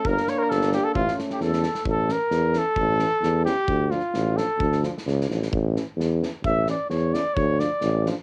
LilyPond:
<<
  \new Staff \with { instrumentName = "Flugelhorn" } { \time 2/4 \tempo 4 = 131 bes'8 cis''16 bes'16 a'8 g'16 a'16 | f'8 r16 g'16 a'4 | r2 | r2 |
r2 | r2 | r2 | r2 |
r2 | }
  \new Staff \with { instrumentName = "Trumpet" } { \time 2/4 bes'8 cis''16 bes'16 a'8 g'16 a'16 | f'8 r16 g'16 a'4 | a'8 bes'4 a'8~ | a'4. g'8~ |
g'8 f'4 a'8~ | a'8 r4. | r2 | e''8 d''8 cis''8 d''8 |
cis''8 d''4 r8 | }
  \new Staff \with { instrumentName = "Euphonium" } { \time 2/4 d'2 | cis'4. r8 | r8 cis'8 r8 cis'8 | r8 cis'8 r8 cis'8 |
r8 d'8 r8 d'8 | r8 d'8 r8 d'8 | r8 cis'8 r8 cis'8 | r8 cis'8 r8 cis'8 |
r8 d'8 r8 d'8 | }
  \new Staff \with { instrumentName = "Trombone" } { \clef bass \time 2/4 bes2 | a4. r8 | r8 e8 r8 e8 | r8 e8 r8 e8 |
r8 f8 r8 f8 | r8 f8 r8 f8 | r8 e8 r8 e8 | r8 e8 r8 e8 |
r8 f8 r8 f8 | }
  \new Staff \with { instrumentName = "Tuba" } { \clef bass \time 2/4 g,,8 r8 g,,4 | a,,8 r8 e,4 | a,,4 e,4 | a,,4 e,4 |
d,4 a,,4 | d,4 cis,8 a,,8 | a,,4 e,4 | a,,4 e,4 |
d,4 a,,4 | }
  \new DrumStaff \with { instrumentName = "Drums" } \drummode { \time 2/4 bd16 sn16 sn8 sn16 sn16 sn8 | bd16 sn16 sn16 sn16 sn16 sn16 sn16 sn16 | bd8 sn8 sn8 sn8 | bd8 sn8 sn8 sn8 |
bd8 sn8 sn8 sn8 | bd16 sn16 sn16 sn16 sn16 sn16 sn16 sn16 | bd8 sn8 sn8 sn8 | bd8 sn8 sn8 sn8 |
bd8 sn8 sn8 sn8 | }
>>